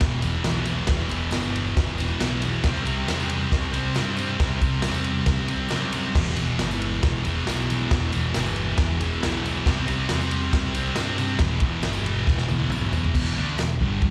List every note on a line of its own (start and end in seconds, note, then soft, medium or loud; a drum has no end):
0.00 0.39 E1 medium
0.00 0.43 E2 medium
0.00 0.24 B2 medium
0.00 0.22 E3 loud
0.00 kick loud
0.00 snare loud
0.00 ride loud
0.12 tambourine soft
0.22 0.44 B2 medium
0.22 0.47 E3 medium
0.22 ride medium
0.22 tambourine medium
0.35 tambourine soft
0.44 0.83 B1 medium
0.44 0.87 E2 medium
0.44 0.69 B2 medium
0.44 0.67 E3 medium
0.44 snare loud
0.44 ride loud
0.44 tambourine loud
0.65 0.91 E3 medium
0.65 ride medium
0.65 tambourine medium
0.70 0.89 B2 medium
0.77 tambourine soft
0.87 1.08 E1 medium
0.87 1.30 E2 medium
0.87 1.12 B2 loud
0.87 kick loud
0.87 snare loud
0.87 ride loud
0.91 1.10 E3 loud
0.98 tambourine soft
1.09 1.29 E1 medium
1.09 1.35 E3 medium
1.09 ride medium
1.09 tambourine medium
1.13 1.32 B2 medium
1.21 tambourine soft
1.31 1.71 G1 medium
1.31 2.19 E2 medium
1.31 2.02 B2 loud
1.31 snare loud
1.31 ride loud
1.31 tambourine loud
1.35 1.98 E3 medium
1.43 tambourine medium
1.56 ride medium
1.66 tambourine soft
1.77 2.14 E1 medium
1.77 kick loud
1.77 snare loud
1.77 ride loud
1.87 tambourine soft
1.98 2.24 E3 medium
1.98 ride medium
1.98 tambourine medium
2.03 2.21 B2 medium
2.10 tambourine soft
2.20 2.58 B1 medium
2.20 2.63 E2 medium
2.20 2.44 B2 medium
2.20 snare loud
2.20 ride loud
2.20 tambourine medium
2.24 2.41 E3 medium
2.41 2.63 B2 medium
2.41 2.66 E3 medium
2.41 ride medium
2.41 tambourine medium
2.54 tambourine soft
2.64 2.83 C2 loud
2.64 3.06 C3 loud
2.64 2.87 G3 loud
2.64 2.85 C4 loud
2.64 kick loud
2.64 snare loud
2.64 ride loud
2.75 tambourine soft
2.85 3.05 C2 medium
2.85 3.08 G3 medium
2.85 3.10 C4 medium
2.85 ride medium
2.85 tambourine medium
2.98 tambourine soft
3.07 3.45 E2 medium
3.07 3.94 C3 medium
3.07 3.76 G3 loud
3.07 3.72 C4 loud
3.07 snare loud
3.07 ride loud
3.07 tambourine medium
3.20 tambourine medium
3.29 ride medium
3.41 tambourine soft
3.52 3.90 C2 loud
3.52 kick loud
3.52 snare loud
3.52 ride loud
3.64 tambourine soft
3.73 3.97 G3 medium
3.73 3.98 C4 medium
3.73 ride medium
3.73 tambourine medium
3.85 tambourine soft
3.94 4.33 G2 medium
3.94 4.37 C3 medium
3.94 4.20 G3 medium
3.94 snare loud
3.94 ride loud
3.94 tambourine medium
3.99 4.16 C4 medium
4.17 4.40 G3 medium
4.17 4.41 C4 medium
4.17 ride medium
4.17 tambourine medium
4.28 tambourine soft
4.38 4.59 C2 loud
4.38 4.80 C3 loud
4.38 4.65 G3 loud
4.38 kick loud
4.38 snare loud
4.38 ride loud
4.38 tambourine soft
4.42 4.61 C4 loud
4.51 tambourine soft
4.61 4.80 C2 medium
4.61 4.83 G3 medium
4.61 4.84 C4 medium
4.61 kick medium
4.61 ride medium
4.61 tambourine medium
4.74 tambourine soft
4.81 5.21 E2 medium
4.81 5.70 C3 loud
4.81 5.52 G3 loud
4.81 5.48 C4 loud
4.81 snare loud
4.81 ride loud
4.81 tambourine loud
4.94 tambourine medium
5.04 ride medium
5.04 tambourine soft
5.17 tambourine soft
5.26 5.65 C2 medium
5.26 kick loud
5.26 snare loud
5.26 ride loud
5.26 tambourine soft
5.39 tambourine soft
5.48 5.73 C4 medium
5.48 ride medium
5.48 tambourine medium
5.53 5.73 G3 medium
5.68 6.14 C3 medium
5.68 snare loud
5.68 ride loud
5.68 tambourine loud
5.72 6.10 F#2 loud
5.72 5.96 G3 medium
5.72 5.92 C4 medium
5.81 tambourine soft
5.92 6.18 G3 medium
5.92 6.13 C4 medium
5.92 ride medium
5.92 tambourine medium
6.04 tambourine soft
6.15 6.34 E1 loud
6.15 6.58 E2 medium
6.15 6.39 B2 loud
6.15 6.36 E3 loud
6.15 kick loud
6.15 snare loud
6.15 crash loud
6.26 tambourine soft
6.36 6.57 E1 medium
6.36 6.59 B2 medium
6.36 6.62 E3 medium
6.36 ride medium
6.36 tambourine medium
6.48 tambourine soft
6.59 6.97 G1 medium
6.59 7.44 E2 medium
6.59 7.26 B2 medium
6.59 7.24 E3 loud
6.59 snare loud
6.59 ride loud
6.59 tambourine loud
6.71 tambourine medium
6.82 ride medium
6.94 tambourine soft
7.03 7.41 E1 medium
7.03 kick loud
7.03 snare loud
7.03 ride loud
7.15 tambourine soft
7.24 7.46 B2 medium
7.24 7.49 E3 medium
7.24 ride medium
7.24 tambourine medium
7.39 tambourine soft
7.45 7.85 B1 medium
7.45 7.88 E2 medium
7.45 7.71 B2 medium
7.45 snare loud
7.45 ride loud
7.49 7.68 E3 medium
7.49 tambourine loud
7.69 7.91 B2 medium
7.69 7.93 E3 medium
7.69 ride medium
7.69 tambourine medium
7.89 8.10 E1 loud
7.89 8.33 E2 medium
7.89 8.14 B2 loud
7.89 8.12 E3 loud
7.89 kick loud
7.89 snare loud
7.89 ride loud
8.04 tambourine soft
8.12 8.32 E1 medium
8.12 8.35 B2 medium
8.12 8.38 E3 medium
8.12 ride medium
8.12 tambourine medium
8.34 8.72 G1 medium
8.34 9.21 E2 medium
8.34 9.02 B2 medium
8.34 8.98 E3 loud
8.34 snare loud
8.34 ride loud
8.34 tambourine loud
8.46 tambourine medium
8.56 ride medium
8.69 tambourine soft
8.78 9.16 E1 medium
8.78 kick loud
8.78 snare loud
8.78 ride loud
8.90 tambourine soft
8.99 9.26 E3 medium
8.99 ride medium
8.99 tambourine medium
9.03 9.23 B2 medium
9.13 tambourine soft
9.22 9.60 B1 medium
9.22 9.64 E2 medium
9.22 9.46 B2 medium
9.22 9.43 E3 loud
9.22 snare loud
9.22 ride loud
9.22 tambourine medium
9.43 9.66 E3 medium
9.43 ride medium
9.43 tambourine medium
9.47 9.65 B2 medium
9.57 tambourine soft
9.66 9.84 C2 loud
9.66 10.09 C3 loud
9.66 9.89 G3 loud
9.66 9.86 C4 loud
9.66 kick loud
9.66 snare loud
9.66 ride loud
9.78 tambourine soft
9.87 10.07 C2 medium
9.87 10.10 G3 medium
9.87 10.12 C4 medium
9.87 ride medium
9.87 tambourine medium
10.00 tambourine soft
10.09 10.47 E2 medium
10.09 10.95 C3 medium
10.09 10.78 G3 loud
10.09 snare loud
10.09 ride loud
10.09 tambourine medium
10.13 10.74 C4 loud
10.21 tambourine medium
10.31 ride medium
10.43 tambourine soft
10.53 10.90 C2 medium
10.53 kick loud
10.53 snare loud
10.53 ride loud
10.64 tambourine soft
10.74 10.99 C4 medium
10.74 ride medium
10.74 tambourine medium
10.79 10.98 G3 medium
10.96 11.34 G2 medium
10.96 11.38 C3 medium
10.96 11.22 G3 medium
10.96 snare loud
10.96 ride loud
10.96 tambourine loud
11.00 11.17 C4 medium
11.18 11.39 C4 medium
11.18 ride medium
11.18 tambourine medium
11.22 11.43 G3 medium
11.29 tambourine soft
11.39 11.59 E1 loud
11.39 11.83 E2 loud
11.39 11.64 B2 medium
11.39 kick loud
11.39 snare loud
11.39 ride loud
11.43 11.60 E3 loud
11.51 tambourine soft
11.60 11.80 E1 medium
11.60 11.86 E3 medium
11.60 kick medium
11.60 ride medium
11.65 11.85 B2 medium
11.82 12.20 G1 medium
11.82 12.69 E2 medium
11.82 snare loud
11.82 ride loud
11.82 tambourine loud
11.87 12.51 B2 loud
11.87 12.47 E3 medium
11.93 tambourine medium
12.06 ride medium
12.15 tambourine soft
12.26 12.65 E1 medium
12.26 kick loud
12.26 snare medium
12.26 tambourine soft
12.38 snare medium
12.38 tambourine soft
12.48 12.71 B2 medium
12.48 12.73 E3 medium
12.48 high tom medium
12.48 tambourine medium
12.59 high tom medium
12.59 tambourine soft
12.69 13.08 B1 medium
12.69 13.13 E2 medium
12.69 12.95 B2 medium
12.69 mid tom medium
12.69 tambourine medium
12.74 12.92 E3 medium
12.81 mid tom medium
12.93 13.15 B2 medium
12.93 13.13 E3 medium
12.93 floor tom loud
12.93 tambourine medium
13.04 floor tom loud
13.04 tambourine soft
13.15 13.35 E1 loud
13.15 13.36 E2 medium
13.15 13.36 B2 loud
13.15 13.37 E3 loud
13.15 kick loud
13.15 crash loud
13.15 crash medium
13.37 13.57 D2 medium
13.37 13.58 D3 loud
13.37 13.58 A3 loud
13.37 13.59 D4 loud
13.58 13.79 E1 medium
13.58 13.76 E2 medium
13.58 13.76 B2 medium
13.58 snare loud
13.58 tambourine loud
13.58 crash medium
13.81 14.01 G1 loud
13.81 14.02 G2 medium
13.81 14.02 D3 medium
13.81 14.02 G3 medium
13.81 kick medium
14.02 kick loud
14.02 crash medium